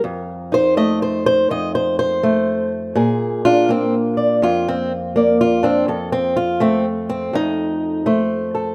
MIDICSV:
0, 0, Header, 1, 2, 480
1, 0, Start_track
1, 0, Tempo, 729927
1, 24, Time_signature, 4, 2, 24, 8
1, 5753, End_track
2, 0, Start_track
2, 0, Title_t, "Steel-string acoustic guitar"
2, 0, Program_c, 0, 25
2, 25, Note_on_c, 0, 41, 77
2, 342, Note_on_c, 0, 63, 48
2, 355, Note_on_c, 0, 72, 101
2, 506, Note_off_c, 0, 72, 0
2, 506, Note_on_c, 0, 57, 67
2, 509, Note_on_c, 0, 75, 83
2, 666, Note_off_c, 0, 75, 0
2, 672, Note_on_c, 0, 72, 72
2, 823, Note_off_c, 0, 72, 0
2, 831, Note_on_c, 0, 72, 97
2, 982, Note_off_c, 0, 41, 0
2, 989, Note_off_c, 0, 72, 0
2, 989, Note_on_c, 0, 41, 58
2, 993, Note_on_c, 0, 75, 89
2, 1148, Note_off_c, 0, 75, 0
2, 1150, Note_on_c, 0, 72, 79
2, 1301, Note_off_c, 0, 72, 0
2, 1308, Note_on_c, 0, 72, 91
2, 1461, Note_off_c, 0, 57, 0
2, 1469, Note_on_c, 0, 57, 68
2, 1788, Note_off_c, 0, 72, 0
2, 1928, Note_off_c, 0, 57, 0
2, 1930, Note_off_c, 0, 63, 0
2, 1943, Note_on_c, 0, 46, 84
2, 1949, Note_off_c, 0, 41, 0
2, 1949, Note_on_c, 0, 68, 53
2, 2269, Note_on_c, 0, 62, 47
2, 2269, Note_on_c, 0, 65, 107
2, 2425, Note_on_c, 0, 58, 63
2, 2427, Note_off_c, 0, 65, 0
2, 2428, Note_off_c, 0, 68, 0
2, 2436, Note_on_c, 0, 60, 78
2, 2592, Note_off_c, 0, 60, 0
2, 2743, Note_on_c, 0, 74, 48
2, 2905, Note_off_c, 0, 46, 0
2, 2908, Note_on_c, 0, 41, 69
2, 2909, Note_off_c, 0, 74, 0
2, 2916, Note_on_c, 0, 65, 98
2, 3071, Note_off_c, 0, 65, 0
2, 3081, Note_on_c, 0, 60, 86
2, 3234, Note_off_c, 0, 60, 0
2, 3383, Note_off_c, 0, 58, 0
2, 3391, Note_on_c, 0, 58, 69
2, 3400, Note_on_c, 0, 74, 54
2, 3553, Note_off_c, 0, 74, 0
2, 3556, Note_on_c, 0, 65, 92
2, 3694, Note_off_c, 0, 62, 0
2, 3702, Note_on_c, 0, 62, 58
2, 3709, Note_on_c, 0, 60, 77
2, 3711, Note_off_c, 0, 65, 0
2, 3848, Note_off_c, 0, 58, 0
2, 3848, Note_off_c, 0, 62, 0
2, 3860, Note_off_c, 0, 41, 0
2, 3867, Note_off_c, 0, 60, 0
2, 3868, Note_on_c, 0, 41, 68
2, 3872, Note_on_c, 0, 69, 53
2, 4024, Note_off_c, 0, 69, 0
2, 4027, Note_on_c, 0, 60, 84
2, 4185, Note_on_c, 0, 65, 86
2, 4186, Note_off_c, 0, 60, 0
2, 4342, Note_on_c, 0, 57, 69
2, 4345, Note_off_c, 0, 65, 0
2, 4347, Note_on_c, 0, 60, 84
2, 4506, Note_off_c, 0, 60, 0
2, 4665, Note_on_c, 0, 60, 83
2, 4820, Note_off_c, 0, 41, 0
2, 4823, Note_on_c, 0, 41, 72
2, 4824, Note_off_c, 0, 60, 0
2, 4835, Note_on_c, 0, 63, 102
2, 5292, Note_off_c, 0, 57, 0
2, 5300, Note_on_c, 0, 57, 69
2, 5305, Note_on_c, 0, 72, 49
2, 5308, Note_off_c, 0, 63, 0
2, 5620, Note_on_c, 0, 69, 48
2, 5753, Note_off_c, 0, 41, 0
2, 5753, Note_off_c, 0, 57, 0
2, 5753, Note_off_c, 0, 69, 0
2, 5753, Note_off_c, 0, 72, 0
2, 5753, End_track
0, 0, End_of_file